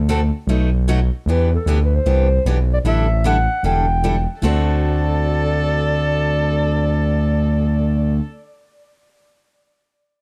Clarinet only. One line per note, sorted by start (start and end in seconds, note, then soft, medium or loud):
1.31 1.51 B4 medium
1.55 1.81 A4 medium
1.84 1.96 B4 medium
1.95 2.47 C5 medium
2.73 2.79 D5 medium
2.87 3.22 E5 medium
3.26 3.62 F#5 medium
3.66 4.25 G5 medium
4.45 8.24 D5 medium